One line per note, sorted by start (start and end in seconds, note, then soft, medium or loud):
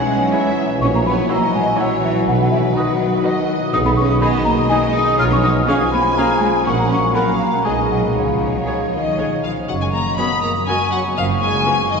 0.00 0.83 B2 medium
0.00 2.28 E3 medium
0.00 0.56 G#3 medium
0.00 0.68 G#3 soft
0.00 0.84 B3 soft
0.00 0.79 C#4 medium
0.00 0.20 E4 medium
0.00 1.17 E4 soft
0.00 0.44 G#4 soft
0.00 0.84 B4 soft
0.00 0.21 C#5 medium
0.00 0.56 C#5 soft
0.00 0.21 E5 medium
0.00 0.32 F#5 medium
0.00 0.56 G#5 medium
0.00 0.84 B5 soft
0.09 0.32 E5 soft
0.21 1.65 C#6 soft
0.33 0.69 E4 soft
0.33 0.50 E4 soft
0.33 0.69 C#5 medium
0.33 0.49 C#5 soft
0.33 1.54 E5 soft
0.33 0.81 E5 medium
0.33 0.70 E5 medium
0.46 0.84 G#4 medium
0.57 1.29 C#5 soft
0.69 0.83 G#3 soft
0.81 1.20 A#1 medium
0.81 2.29 A#2 medium
0.81 0.87 C#4 medium
0.81 3.70 F#4 medium
0.81 1.30 C#5 medium
0.81 0.87 C#6 medium
0.94 2.29 E3 soft
0.94 0.99 A#3 medium
0.94 1.00 A#5 medium
1.05 2.14 F#3 soft
1.05 1.30 B3 medium
1.05 1.12 B5 medium
1.18 2.29 E4 soft
1.30 1.38 A#3 medium
1.30 1.66 E4 medium
1.30 1.47 F#4 soft
1.30 1.66 C#5 medium
1.30 1.79 D#5 medium
1.30 1.46 E5 medium
1.30 1.66 F#5 medium
1.30 1.54 A#5 medium
1.42 1.90 F#4 soft
1.54 1.62 G#3 medium
1.54 1.78 E5 medium
1.54 1.78 G#5 medium
1.66 2.29 C#6 medium
1.79 2.03 F#3 medium
1.79 2.15 E4 medium
1.79 1.95 F#4 soft
1.79 2.15 C#5 medium
1.79 2.28 C#5 medium
1.79 2.29 E5 soft
1.79 1.96 E5 soft
1.79 2.15 F#5 medium
1.79 1.86 F#5 medium
1.91 2.87 F#4 medium
2.03 2.27 E3 medium
2.03 2.29 C#5 medium
2.03 2.10 E5 medium
2.15 2.50 F#3 soft
2.27 2.66 B1 medium
2.27 3.72 B2 medium
2.27 3.70 D#3 medium
2.27 2.39 F#3 medium
2.27 3.23 B4 medium
2.27 2.33 F#5 medium
2.39 2.52 F#3 medium
2.39 3.84 B3 soft
2.39 2.51 F#5 medium
2.51 2.60 E3 medium
2.51 3.60 F#3 soft
2.51 2.57 E5 medium
2.64 4.08 D#4 soft
2.76 3.47 F#3 medium
2.76 3.12 D#4 medium
2.76 2.92 F#4 medium
2.76 3.47 B4 soft
2.76 3.12 B4 medium
2.76 3.13 D#5 medium
2.76 2.93 D#5 medium
2.76 3.48 F#5 medium
2.88 3.35 F#4 soft
3.00 3.23 D#5 medium
3.13 6.68 B5 medium
3.24 3.61 D#4 medium
3.24 3.40 F#4 soft
3.24 3.61 B4 medium
3.24 4.45 D#5 medium
3.24 3.40 D#5 medium
3.24 3.61 D#5 medium
3.24 3.74 D#5 medium
3.37 3.75 F#4 medium
3.48 6.68 B4 medium
3.61 3.75 F#3 soft
3.72 4.13 B1 medium
3.72 4.14 B1 medium
3.72 5.19 B2 medium
3.72 5.15 D#3 medium
3.72 3.78 D#4 medium
3.72 6.61 G#4 medium
3.72 4.22 B4 medium
3.72 3.79 D#6 medium
3.85 6.68 B3 soft
3.85 3.90 B3 medium
3.85 3.91 B5 medium
3.97 5.06 G#3 soft
3.97 4.21 C#4 medium
3.97 4.03 C#6 medium
4.10 4.32 D#4 soft
4.21 4.45 B3 medium
4.21 4.29 D#4 medium
4.21 4.29 G#4 medium
4.21 4.38 G#4 soft
4.21 4.37 D#5 medium
4.21 5.17 D#5 medium
4.21 4.30 D#5 medium
4.21 4.27 B5 medium
4.33 4.94 D#4 soft
4.45 4.70 A#3 medium
4.45 4.69 D#5 medium
4.45 4.51 A#5 medium
4.58 6.04 G#5 soft
4.69 4.94 G#3 medium
4.69 4.78 D#4 medium
4.69 4.78 G#4 medium
4.69 4.86 G#4 medium
4.69 4.78 D#5 medium
4.69 5.21 D#5 soft
4.69 4.86 D#5 medium
4.69 4.75 G#5 medium
4.83 5.67 G#4 soft
4.94 5.19 D#4 medium
4.94 5.18 D#6 medium
5.07 5.42 G#3 soft
5.18 5.60 B1 medium
5.18 6.68 B2 medium
5.18 6.63 F3 medium
5.18 5.23 F4 medium
5.18 5.68 C#5 medium
5.18 5.25 F6 medium
5.31 6.68 F3 medium
5.31 5.36 C#4 medium
5.31 5.38 C#6 medium
5.43 6.52 G#3 soft
5.43 5.51 D#4 medium
5.43 5.49 D#6 medium
5.56 5.79 F4 soft
5.67 5.75 C#4 medium
5.67 5.76 C#4 medium
5.67 5.84 G#4 medium
5.67 5.76 G#4 soft
5.67 5.85 F5 medium
5.67 5.77 F5 medium
5.67 6.64 G#5 medium
5.67 5.74 C#6 medium
5.80 6.41 F4 soft
5.92 6.01 B3 medium
5.92 6.16 F5 soft
5.92 6.19 B5 medium
6.17 6.41 A#3 medium
6.17 6.25 C#4 soft
6.17 6.33 G#4 soft
6.17 6.26 G#4 soft
6.17 6.68 F5 soft
6.17 6.34 F5 soft
6.17 6.26 F5 soft
6.17 6.43 A#5 medium
6.30 6.68 G#4 soft
6.41 6.49 G#3 medium
6.41 6.68 F4 soft
6.41 6.66 G#5 medium
6.54 6.68 G#3 soft
6.66 7.07 A#1 medium
6.66 7.67 A#2 medium
6.66 7.65 F#3 medium
6.66 6.71 C#4 medium
6.66 7.65 A#4 medium
6.66 7.15 F#5 medium
6.66 6.72 C#6 medium
6.77 6.90 A#3 medium
6.77 6.85 A#5 medium
6.90 7.67 F#3 soft
6.90 6.98 C#4 medium
6.90 7.16 C#6 medium
7.03 7.27 F#4 soft
7.14 7.22 B3 medium
7.14 7.23 C#4 soft
7.14 7.23 A#4 soft
7.14 7.67 A#4 soft
7.14 7.32 A#4 soft
7.14 7.64 F5 medium
7.14 7.31 F#5 soft
7.14 7.24 F#5 soft
7.14 7.40 B5 medium
7.28 7.68 F#4 soft
7.39 7.47 A#3 medium
7.39 7.67 F#5 soft
7.39 7.67 A#5 medium
7.53 7.67 A#5 soft
7.64 8.07 B1 soft
7.64 8.18 B2 soft
7.64 7.72 G#3 medium
7.64 8.75 G#3 soft
7.64 7.73 B3 soft
7.64 8.75 G#4 soft
7.64 7.73 G#4 soft
7.64 7.81 G#4 soft
7.64 8.15 D#5 medium
7.64 7.81 D#5 soft
7.64 7.74 D#5 soft
7.64 7.91 G#5 medium
7.78 8.18 B3 soft
7.90 8.15 F#3 soft
7.90 8.27 G#3 soft
7.90 7.97 F#5 medium
8.03 8.18 D#4 soft
8.15 8.59 C#2 soft
8.15 9.71 C#3 soft
8.15 9.16 F3 soft
8.15 9.44 C#5 soft
8.15 9.16 F5 medium
8.29 9.71 G#3 soft
8.42 8.66 C#4 soft
8.55 9.43 G#4 soft
8.66 8.75 G#3 soft
8.66 9.55 C#4 soft
8.66 8.74 G#4 soft
8.66 8.83 G#4 soft
8.66 8.83 C#5 soft
8.66 8.75 C#5 soft
8.80 9.04 C#5 soft
8.92 9.40 D#3 soft
8.92 9.40 D#5 medium
8.92 9.17 G#5 soft
9.05 9.30 C#5 soft
9.18 9.26 G#3 soft
9.18 9.26 G#4 soft
9.18 9.34 G#4 soft
9.18 9.26 C#5 soft
9.18 9.35 C#5 soft
9.18 9.71 G#5 soft
9.31 12.00 C#5 soft
9.43 9.69 F3 soft
9.43 9.71 G#4 soft
9.43 9.51 F5 soft
9.57 10.17 C#4 soft
9.68 10.10 F#1 soft
9.68 10.10 F#2 soft
9.68 11.16 F#2 soft
9.68 9.74 F#3 medium
9.68 9.73 F#5 medium
9.68 10.15 C#6 soft
9.81 9.87 G#3 soft
9.81 9.86 G#5 medium
9.93 10.04 A#3 medium
9.93 10.91 A#3 soft
9.93 10.17 A#5 medium
10.17 10.25 F#3 soft
10.17 10.30 B3 medium
10.17 10.26 C#4 soft
10.17 10.27 F#4 soft
10.17 10.27 A#4 soft
10.17 10.42 B5 medium
10.17 10.67 D#6 soft
10.42 11.18 C#3 soft
10.42 10.54 A#3 medium
10.42 10.50 A#5 medium
10.67 10.75 F#3 soft
10.67 10.79 G#3 medium
10.67 10.75 C#4 soft
10.67 11.64 C#4 soft
10.67 10.76 F#4 soft
10.67 10.76 A#4 soft
10.67 10.91 G#5 medium
10.67 12.00 C#6 medium
10.91 11.02 F#3 medium
10.91 11.18 A#3 soft
10.91 11.00 F#5 medium
11.16 11.57 F#1 medium
11.16 11.57 F#2 medium
11.16 12.00 F#2 medium
11.16 11.28 F3 medium
11.16 11.25 F5 medium
11.41 11.89 G#3 medium
11.41 12.00 B3 soft
11.41 11.89 G#5 medium
11.65 11.73 G#3 medium
11.65 12.00 C#4 soft
11.65 11.73 C#4 medium
11.65 11.74 F4 medium
11.65 11.74 B4 medium
11.90 12.00 C#3 soft
11.90 12.00 D#3 medium
11.90 12.00 D#5 medium